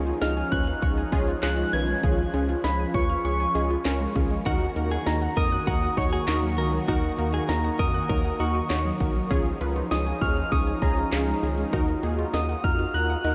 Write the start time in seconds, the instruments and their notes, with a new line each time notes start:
Already playing: analog synth bass C#2, analog synth pad F3 C#4 D#4, synth keys C#4 F4 G#4
0.06 synth pluck F4, closed hi-hat
0.22 analog synth bass C#2, synth keys C#4 F4 G#4, synth pluck D#5, soft synth lead F6, snare, closed hi-hat
0.37 synth pluck G#5, closed hi-hat
0.52 analog synth bass D#2, synth keys C#4 F4 B4, synth pluck C#6, soft synth lead F#6, kick, closed hi-hat
0.67 synth pluck F6, closed hi-hat
0.82 analog synth bass C#2, synth keys C#4 F4 G#4, synth pluck C#6, kick, closed hi-hat
0.97 synth pluck G#5, closed hi-hat
1.12 analog synth bass C#2, synth keys C#4 F4 G#4, synth pluck D#5, kick, closed hi-hat
1.28 synth pluck F4, closed hi-hat
1.43 analog synth bass C#2, synth pluck C#4, synth keys C#4 F4 G#4, soft synth lead F#6, snare, clap, closed hi-hat
1.58 synth pluck G#3, closed hi-hat
1.73 analog synth bass B1, synth pluck D#3, synth keys C#4 F4 B4, soft synth lead G#6, open hi-hat
1.88 synth pluck G#3, closed hi-hat
2.03 analog synth bass C#2, synth pluck D#3, synth keys C#4 F4 G#4, analog synth pad F4, kick, closed hi-hat
2.19 closed hi-hat
2.34 analog synth bass C#2, synth keys C#4 F4 G#4, synth pluck C#4, closed hi-hat
2.49 synth pluck F4, closed hi-hat
2.64 analog synth bass C#2, synth keys C#4 F4 G#4, synth pluck D#5, soft synth lead B5, snare, closed hi-hat
2.79 synth pluck G#5, closed hi-hat
2.94 analog synth bass D#2, synth keys C#4 F4 B4, synth pluck C#6, soft synth lead C#6, kick, open hi-hat
3.09 synth pluck F6, closed hi-hat
3.25 analog synth bass C#2, synth keys C#4 F4 G#4, synth pluck C#6, soft synth lead C#6, closed hi-hat
3.40 synth pluck G#5, closed hi-hat
3.55 analog synth bass C#2, synth keys C#4 F4 G#4, synth pluck D#5, closed hi-hat
3.70 synth pluck F4, closed hi-hat
3.85 analog synth bass C#2, synth keys C#4 F4 A#4, synth pluck C#4, snare, clap, closed hi-hat
4.00 synth pluck G#3, closed hi-hat
4.16 analog synth bass C#2, synth pluck D#3, synth keys C#4 F4 G#4, kick, open hi-hat
4.30 synth pluck G#3, closed hi-hat
4.46 analog synth bass D#2, analog synth pad D#3 A#3 F#4, synth pluck D#3, synth keys D#4 F#4 A#4, clean electric guitar F#4, kick, closed hi-hat
4.61 closed hi-hat
4.76 analog synth bass D#2, synth pluck A#3, synth keys D#4 F#4 A#4, closed hi-hat
4.91 synth pluck F#4, clean electric guitar G#4, closed hi-hat
5.06 analog synth bass D#2, synth keys D#4 F#4 C#5, synth pluck D#5, soft synth lead A#5, snare, closed hi-hat
5.22 synth pluck F#5, closed hi-hat
5.37 analog synth bass F2, synth keys D#4 F#4 A#4, clean electric guitar A#4, synth pluck A#5, soft synth lead D#6, kick, closed hi-hat
5.52 synth pluck F#6, closed hi-hat
5.67 analog synth bass D#2, synth keys D#4 F#4 A#4, clean electric guitar F#4, synth pluck A#5, kick, closed hi-hat
5.82 synth pluck F#5, closed hi-hat
5.97 analog synth bass D#2, synth keys D#4 F#4 C#5, synth pluck D#5, soft synth lead C#6, kick, closed hi-hat
6.13 synth pluck F#4, clean electric guitar G#4, closed hi-hat
6.28 analog synth bass D#2, synth pluck A#3, synth keys D#4 F#4 A#4, clean electric guitar A#4, soft synth lead C#6, snare, clap, closed hi-hat
6.43 synth pluck F#3, closed hi-hat
6.58 analog synth bass C#2, synth pluck D#3, synth keys D#4 F#4 A#4, clean electric guitar A#4, open hi-hat
6.73 synth pluck F#3, closed hi-hat
6.88 analog synth bass D#2, synth pluck D#3, synth keys D#4 F#4 A#4, clean electric guitar F#4, kick, closed hi-hat
7.03 closed hi-hat
7.18 analog synth bass D#2, synth pluck A#3, synth keys D#4 F#4 A#4, closed hi-hat
7.34 synth pluck F#4, clean electric guitar G#4, closed hi-hat
7.49 analog synth bass D#2, synth keys D#4 F#4 A#4, synth pluck D#5, soft synth lead A#5, snare, closed hi-hat
7.64 synth pluck F#5, closed hi-hat
7.79 analog synth bass F2, synth keys D#4 F#4 A#4, clean electric guitar A#4, synth pluck A#5, soft synth lead D#6, kick, closed hi-hat
7.94 synth pluck F#6, closed hi-hat
8.09 analog synth bass D#2, synth keys D#4 F#4 C#5, clean electric guitar A#4, synth pluck A#5, kick, closed hi-hat
8.24 synth pluck F#5, closed hi-hat
8.40 analog synth bass D#2, synth keys D#4 F#4 A#4, clean electric guitar F#4, synth pluck D#5, soft synth lead C#6, closed hi-hat
8.55 synth pluck F#4, closed hi-hat
8.70 analog synth bass D#2, synth pluck A#3, synth keys D#4 F#4 C#5, soft synth lead C#6, snare, clap, closed hi-hat
8.85 synth pluck F#3, closed hi-hat
9.00 analog synth bass B1, synth pluck D#3, synth keys D#4 F#4 A#4, kick, open hi-hat
9.15 synth pluck F#3, closed hi-hat
9.30 analog synth bass C#2, synth pluck D#3, analog synth pad F3 C#4 D#4, synth keys C#4 F4 G#4, kick, closed hi-hat
9.46 closed hi-hat
9.61 analog synth bass C#2, synth pluck C#4, synth keys C#4 F4 B4, closed hi-hat
9.76 synth pluck F4, closed hi-hat
9.91 analog synth bass C#2, synth keys C#4 F4 G#4, synth pluck D#5, soft synth lead D#6, snare, closed hi-hat
10.06 synth pluck G#5, closed hi-hat
10.21 analog synth bass D#2, synth keys C#4 F4 G#4, synth pluck C#6, soft synth lead F6, kick, closed hi-hat
10.37 synth pluck F6, closed hi-hat
10.52 analog synth bass C#2, synth keys C#4 F4 G#4, synth pluck C#6, soft synth lead D#6, kick, closed hi-hat
10.67 synth pluck G#5, closed hi-hat
10.82 analog synth bass C#2, synth keys C#4 F4 G#4, synth pluck D#5, soft synth lead A#5, kick, closed hi-hat
10.97 synth pluck F4, closed hi-hat
11.12 analog synth bass C#2, synth pluck C#4, synth keys C#4 F4 G#4, snare, clap, closed hi-hat
11.28 synth pluck G#3, closed hi-hat
11.43 analog synth bass C#2, synth pluck D#3, synth keys C#4 F4 G#4, open hi-hat
11.58 synth pluck G#3, closed hi-hat
11.73 analog synth bass D#2, synth pluck D#3, synth keys D#4 F#4 A#4, analog synth pad F4 F#4, kick, closed hi-hat
11.88 closed hi-hat
12.03 analog synth bass D#2, synth pluck A#3, synth keys D#4 F#4 G#4, closed hi-hat
12.18 synth pluck F4, closed hi-hat
12.34 analog synth bass D#2, synth keys D#4 F#4 A#4, synth pluck D#5, soft synth lead D#6, snare, closed hi-hat
12.49 synth pluck F#5, closed hi-hat
12.64 analog synth bass F2, synth keys D#4 F#4 A#4, synth pluck A#5, soft synth lead F6, kick, open hi-hat
12.79 synth pluck F6, closed hi-hat
12.94 analog synth bass D#2, synth keys D#4 F#4 A#4, synth pluck A#5, soft synth lead F#6, closed hi-hat
13.09 synth pluck F#5, closed hi-hat
13.24 analog synth bass D#2, synth keys D#4 F#4 A#4, synth pluck D#5, closed hi-hat